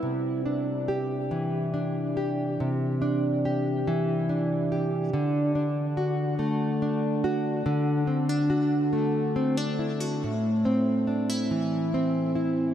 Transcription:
\new Staff \with { instrumentName = "Nylon-string guitar" } { \time 6/8 \key c \lydian \tempo 4. = 47 c8 d'8 g'8 e8 d'8 g'8 | c8 d'8 g'8 e8 d'8 g'8 | d8 d'8 fis'8 a8 d'8 fis'8 | d8 c'16 d'16 fis'8 a8 c'16 d'16 e'16 fis'16 |
a,8 c'8 d'16 e'16 e8 c'8 e'8 | }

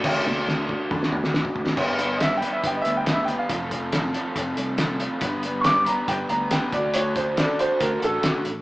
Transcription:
<<
  \new Staff \with { instrumentName = "Upright piano" } { \time 4/4 \key g \major \tempo 4 = 139 r1 | r4 \tuplet 3/2 { <ees'' e''>8 g''8 e''8 g''8 <ees'' e''>8 g''8 <ees'' e''>8 g''8 f''8~ } | f''4. r2 r8 | r4 <cis''' d'''>8 bes''8 g''8 bes''8 g''8 d''8 |
cis''8 c''8 d''8 c''8 bes'8 a'8 r4 | }
  \new Staff \with { instrumentName = "Overdriven electric guitar" } { \time 4/4 \key g \major <d d' fis' a'>1 | <g b d' b'>4. <g b d' b'>4. <g b d' b'>4 | <f a c' f' a'>4. <f a c' f' a'>4. <f a c' f' a'>4 | <g b d' b'>4. <g b d' b'>4. <g b d' b'>8 <d d' fis' a'>8~ |
<d d' fis' a'>4 <d d' fis' a'>4. <d d' fis' a'>4 r8 | }
  \new Staff \with { instrumentName = "Steel-string acoustic guitar" } { \time 4/4 \key g \major <d e a d' fis' d''>8 <a d' fis' d''>8 <a d' fis' d''>8 <a d' fis' d''>8 <d e a d' fis' d''>8 <a d' fis' d''>8 <a d' fis' d''>8 <a d' fis' d''>8 | <g, d g b d' b'>8 <g b d' b'>8 <g, d g b d' b'>8 <g b d' b'>8 <g b d' b'>8 <g b d' b'>8 <g, d g b d' b'>8 <g b d' b'>8 | <f c' f' a'>8 <c' f' a'>8 <f c' f' a'>8 <c' f' a'>8 <f c' f' a'>8 <c' f' a'>8 <f c' f' a'>8 <c' f' a'>8 | <g, d g b d' b'>8 <g b d' b'>8 <g, d g b d' b'>8 <g b d' b'>8 <g b d' b'>8 <g b d' b'>8 <g, d g b d' b'>8 <d' fis' a'>8 |
<d a d' fis' a'>8 <d' fis' a'>8 <d a d' fis' a'>8 <d' fis' a'>8 <a d' fis' a'>8 <d' fis' a'>8 <d a d' fis' a'>8 <d' fis' a'>8 | }
  \new Staff \with { instrumentName = "Fingered electric bass" } { \clef bass \time 4/4 \key g \major d,8 d,4. d,8 d,4 d,8 | g,,2 g,,8 d,4. | f,,2 f,,8 c,4. | g,,2 g,,8 d,4 d,8~ |
d,4. r8 d,8 a,,8 b,,8 a,,8 | }
  \new DrumStaff \with { instrumentName = "Drums" } \drummode { \time 4/4 <cymc bd sn>8 tommh8 sn8 bd8 <bd toml>16 sn16 toml16 sn16 sn16 bd16 bd16 sn16 | <cymc bd>8 hh8 <hh sn>8 hh8 <hh bd>8 hh8 <hh sn>8 hh8 | <hh bd>8 <hh bd>8 <hh sn>8 hh8 <hh bd>8 hh8 <hh sn>8 hh8 | <hh bd>8 hh8 <hh sn>8 hh8 <hh bd>8 hh8 <hh sn>8 <hh bd>8 |
hh8 <hh bd>8 <hh sn>8 hh8 <hh bd>8 hh8 <hh sn>8 hh8 | }
>>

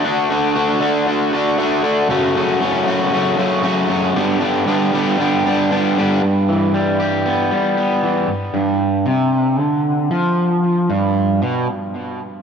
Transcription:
\new Staff \with { instrumentName = "Distorted electric guitar" } { \time 4/4 \key g \lydian \tempo 4 = 116 <d a d' fis'>8 <d a d' fis'>8 <d a d' fis'>8 <d a d' fis'>8 <d a d' fis'>8 <d a d' fis'>8 <d a d' fis'>8 <d a d' fis'>8 | <fis, cis fis a cis' fis'>8 <fis, cis fis a cis' fis'>8 <fis, cis fis a cis' fis'>8 <fis, cis fis a cis' fis'>8 <fis, cis fis a cis' fis'>8 <fis, cis fis a cis' fis'>8 <fis, cis fis a cis' fis'>8 <fis, cis fis a cis' fis'>8 | <g, d g b d' g'>8 <g, d g b d' g'>8 <g, d g b d' g'>8 <g, d g b d' g'>8 <g, d g b d' g'>8 <g, d g b d' g'>8 <g, d g b d' g'>8 <g, d g b d' g'>8 | g,8 e8 g8 g'8 b8 g8 b8 e8 |
g,8 g,4 c4 d4 f8~ | f4 g,4 b,8 r4. | }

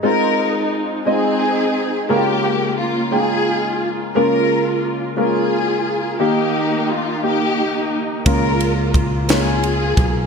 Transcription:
<<
  \new Staff \with { instrumentName = "String section" } { \time 6/8 \key f \minor \tempo 4. = 58 << { bes'4 r8 aes'4. | g'4 f'8 aes'4 r8 | bes'4 r8 aes'4. | g'4 f'8 g'4 r8 |
bes'4 r8 aes'4. | } \\ { ees'4. <c' ees'>4. | bes4. f'4. | f'4. f'4. | <bes ees'>4. <bes ees'>4. |
f'4. f'4. | } >> }
  \new Staff \with { instrumentName = "Grand piano" } { \time 6/8 \key f \minor <aes c' ees' f' c''>4~ <aes c' ees' f' c''>16 r16 <aes c' ees' f' ees''>4~ <aes c' ees' f' ees''>16 r16 | <aes bes des' fes' f' bes'>4~ <aes bes des' fes' f' bes'>16 r16 <aes bes des' ees' f' g''>4~ <aes bes des' ees' f' g''>16 r16 | <aes bes des' f' bes'>4~ <aes bes des' f' bes'>16 r16 <aes bes des' f' bes'>4~ <aes bes des' f' bes'>16 r16 | <bes ees' g'>4~ <bes ees' g'>16 r16 <bes ees' g'>4~ <bes ees' g'>16 r16 |
<aes bes des' f' bes'>4~ <aes bes des' f' bes'>16 r16 <aes bes des' f' des''>4~ <aes bes des' f' des''>16 r16 | }
  \new Staff \with { instrumentName = "Grand piano" } { \clef bass \time 6/8 \key f \minor r2. | des4. r4. | des4. r4. | ees4. r4. |
des4. r4. | }
  \new Staff \with { instrumentName = "Fingered electric bass" } { \clef bass \time 6/8 \key f \minor r2. | r2. | r2. | r2. |
des,2~ des,8 ces,8 | }
  \new DrumStaff \with { instrumentName = "Drums" } \drummode { \time 6/8 r4. r4. | r4. r4. | r4. r4. | r4. r4. |
<bd cymr>8 cymr8 <bd cymr>8 <cymr sn>8 cymr8 <bd cymr>8 | }
>>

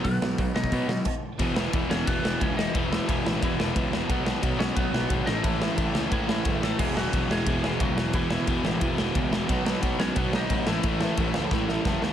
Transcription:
<<
  \new Staff \with { instrumentName = "Lead electric guitar" } { \time 4/4 \key b \mixolydian \tempo 4 = 178 <b b'>4. <dis' dis''>2 r8 | r4. <cis' cis''>8 <b b'>4 <cis' cis''>8 <dis' dis''>8 | <e e'>4 <e e'>4 <e e'>4. r8 | r4. <cis' cis''>8 <b b'>4. <dis' dis''>8 |
<e e'>2 <e e'>8 <e e'>4 <a a'>8 | <gis gis'>8 <fis fis'>4 <gis gis'>4 <gis gis'>8 <fis fis'>4 | <e e'>8 <e e'>2 r4. | r4. <cis' cis''>8 <b b'>8 <dis' dis''>4 <e e'>8~ |
<e e'>2. r4 | }
  \new Staff \with { instrumentName = "Distorted electric guitar" } { \clef bass \time 4/4 \key b \mixolydian <b, fis b>4. <b, fis b>4. r4 | <e, b, e>1 | <e, b, e>1 | <b, fis b>2.~ <b, fis b>8 <a, e a>8~ |
<a, e a>2.~ <a, e a>8 r8 | <e, b, e>1 | <e, b, e>1 | <b, fis b>2.~ <b, fis b>8 <a, e a>8~ |
<a, e a>2.~ <a, e a>8 r8 | }
  \new Staff \with { instrumentName = "Overdriven electric guitar" } { \clef bass \time 4/4 \key b \mixolydian <b, fis>8 <b, fis>8 <b, fis>8 <b, fis>8 <b, fis b>8 <b, fis>8 r4 | <e, b, e>8 <e, b, e>8 <e, b, e>8 <e, b, e>8 <e, b, e>8 <e, b, e>8 <e, b, e>8 <e, b, e>8 | <e, b, e>8 <e, b, e>8 <e, b, e>8 <e, b, e>8 <e, b, e>8 <e, b, e>8 <e, b, e>8 <e, b, e>8 | <b, fis b>8 <b, fis b>8 <b, fis b>8 <b, fis b>8 <b, fis b>8 <b, fis b>8 <b, fis b>8 <a, e a>8 |
<a, e a>8 <a, e a>8 <a, e a>8 <a, e a>8 <a, e a>8 <a, e a>8 <a, e a>8 <a, e a>8 | <e, b, e>8 <e, b, e>8 <e, b, e>8 <e, b, e>8 <e, b, e>8 <e, b, e>8 <e, b, e>8 <e, b, e>8 | <e, b, e>8 <e, b, e>8 <e, b, e>8 <e, b, e>8 <e, b, e>8 <e, b, e>8 <e, b, e>8 <e, b, e>8 | <b, fis b>8 <b, fis b>8 <b, fis b>8 <b, fis b>8 <b, fis b>8 <b, fis b>8 <b, fis b>8 <a, e a>8 |
<a, e a>8 <a, e a>8 <a, e a>8 <a, e a>8 <a, e a>8 <a, e a>8 <a, e a>8 <a, e a>8 | }
  \new Staff \with { instrumentName = "Picked electric bass" } { \clef bass \time 4/4 \key b \mixolydian b,,8 b,,8 b,,8 b,,8 b,8 b,8 r4 | e,,8 e,,8 e,,8 e,,8 e,,8 e,,8 cis,8 e,,8 | e,,4 e,,8 a,,8 e,,8 e,,8 cis,8 e,,8 | b,,8 b,,8 b,,8 b,,8 b,,8 b,,8 gis,,8 a,,8 |
a,,4 a,,8 cis,8 a,,8 a,,8 fis,,8 a,,8 | e,,8 e,,8 e,,8 e,,8 e,,8 e,,8 cis,8 e,,8 | e,,4 e,,8 a,,8 e,,8 e,,8 cis,8 e,,8 | b,,8 b,,8 b,,8 b,,8 b,,8 b,,8 a,,8 a,,8 |
a,,4 a,,8 cis,8 a,,8 a,,8 fis,,8 dis,8 | }
  \new DrumStaff \with { instrumentName = "Drums" } \drummode { \time 4/4 <hho bd>8 sn8 <hho bd>8 sn16 bd16 <hho bd>8 sn8 <cymc bd>4 | <bd cymr>8 sn8 <bd cymr>8 sn8 <bd cymr>8 sn8 <bd cymr>8 sn8 | <bd cymr>8 sn8 <bd cymr>8 sn8 <bd cymr>8 sn8 <bd cymr>8 sn8 | <bd cymr>8 sn8 <bd cymr>8 sn8 <bd cymr>8 sn8 <bd cymr>8 sn8 |
<bd cymr>8 sn8 <bd cymr>8 sn8 <bd cymr>8 sn8 <bd cymr>8 sn8 | <cymc bd>8 sn8 <bd cymr>8 sn8 <bd cymr>8 sn8 <bd cymr>8 sn8 | <bd cymr>8 sn8 <bd cymr>8 sn8 <bd cymr>8 sn8 <bd cymr>8 sn8 | <bd cymr>8 sn8 <bd cymr>8 sn8 <bd cymr>8 sn8 <bd cymr>8 sn8 |
<bd cymr>8 sn8 <bd cymr>8 sn8 <bd sn>8 sn8 <bd sn>8 sn8 | }
>>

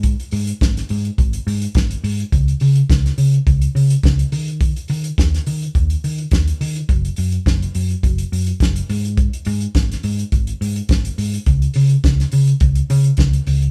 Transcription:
<<
  \new Staff \with { instrumentName = "Fingered electric bass" } { \clef bass \time 4/4 \key gis \minor \tempo 4 = 105 gis,8 gis,8 gis,,8 gis,8 gis,,8 gis,8 gis,,8 gis,8 | cis,8 cis8 cis,8 cis8 cis,8 cis8 cis,8 dis8~ | dis8 dis8 dis,8 dis8 dis,8 dis8 dis,8 dis8 | fis,,8 fis,8 fis,,8 fis,8 fis,,8 fis,8 fis,,8 gis,8~ |
gis,8 gis,8 gis,,8 gis,8 gis,,8 gis,8 gis,,8 gis,8 | cis,8 cis8 cis,8 cis8 cis,8 cis8 cis,8 cis,8 | }
  \new DrumStaff \with { instrumentName = "Drums" } \drummode { \time 4/4 <hh bd>16 hh16 hho16 hh16 <hh bd sn>16 <hh sn>16 hho16 hh16 <hh bd>16 hh16 hho16 hh16 <hh bd sn>16 hh16 hho16 hh16 | <hh bd>16 hh16 hho16 hh16 <hh bd sn>16 <hh sn>16 hho16 hh16 <hh bd>16 hh16 hho16 hh16 <hh bd sn>16 hh16 hho16 hh16 | <hh bd>16 hh16 hho16 hh16 <hh bd sn>16 <hh sn>16 hho16 hh16 <hh bd>16 hh16 hho16 hh16 <hh bd sn>16 hh16 hho16 hh16 | <hh bd>16 hh16 hho16 hh16 <hh bd sn>16 hh16 hho16 hh16 <hh bd>16 hh16 hho16 hh16 <hh bd sn>16 hh16 hho16 hh16 |
<hh bd>16 hh16 hho16 hh16 <hh bd sn>16 <hh sn>16 hho16 hh16 <hh bd>16 hh16 hho16 hh16 <hh bd sn>16 hh16 hho16 hh16 | <hh bd>16 hh16 hho16 hh16 <hh bd sn>16 <hh sn>16 hho16 hh16 <hh bd>16 hh16 hho16 hh16 <hh bd sn>16 hh16 hho16 hh16 | }
>>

